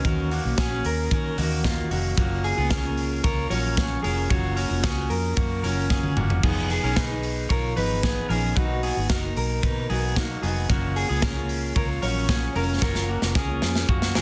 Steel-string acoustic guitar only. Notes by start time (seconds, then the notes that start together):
0.04 D#3 A#3 C#4 F#4
0.43 A#3 C#4 F#4
0.70 A#3 C#4 F#4
1.37 D#3 A#3 C#4 F#4
1.63 D#3 A#3 C#4 F#4
1.90 D#3 A#3 C#4 F#4
2.17 F#3 A#3 C#4 F4
2.57 A#3 C#4 F4
2.83 A#3 C#4 F4
3.49 F#3 A#3 C#4 F4
3.76 F#3 A#3 C#4 F4
4.02 F#3 A#3 C#4 F4
4.29 F#3 A#3 C#4
4.69 A#3 C#4 F4
4.96 A#3 C#4 F4
5.63 F#3 A#3 C#4 F4
5.89 F#3 A#3 C#4 F4
6.16 F#3 A#3 C#4 F4
6.43 F3 B3 D#4 G#4
6.83 B3 D#4 G#4
7.09 B3 D#4 G#4
7.76 F3 B3 D#4 G#4
8.03 F3 B3 D#4 G#4
8.29 F3 B3 D#4 G#4
8.56 B2 F#3 A#3 D#4 F#4
8.96 A#3 D#4 F#4
9.23 A#3 D#4 F#4
9.89 F#3 A#3 D#4 F#4
10.16 F#3 A#3 D#4 F#4
10.42 F#3 A#3 D#4 F#4
10.69 F#3 A#3 C#4 F4
11.09 A#3 C#4 F4
11.36 A#3 C#4 F4
12.02 F#3 A#3 C#4 F4
12.28 F#3 A#3 C#4 F4
12.54 F#3 A#3 C#4 F4
12.81 F#3 A#3 C#4 F4
13.21 A#3 C#4 F4
13.48 A#3 C#4 F4
14.14 F#3 A#3 C#4 F4